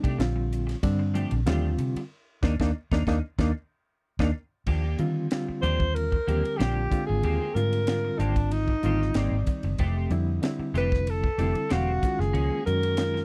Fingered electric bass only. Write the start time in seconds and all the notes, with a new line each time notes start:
0.03 C3
0.19 A#1
0.84 G2
1.32 A#1
1.47 D#2
1.78 C3
1.95 muted fingered electric bass stroke
2.43 D#2
2.60 D#2
2.92 D#2
3.07 D#2
3.39 D#2
4.19 D#2
4.66 D#2
4.99 D#3
5.49 muted fingered electric bass stroke
5.63 D#2
6.28 D#2
6.60 A#1
7.09 G#1
7.23 D#2
7.55 G#2
8.19 G#1
8.83 G#1
9.15 G#1
9.31 G#1
9.63 F#1
9.79 F1
10.10 F2
10.59 muted fingered electric bass stroke
10.74 F1
11.38 F1
11.71 E1
12.19 F#1
12.34 C#2
12.67 F#2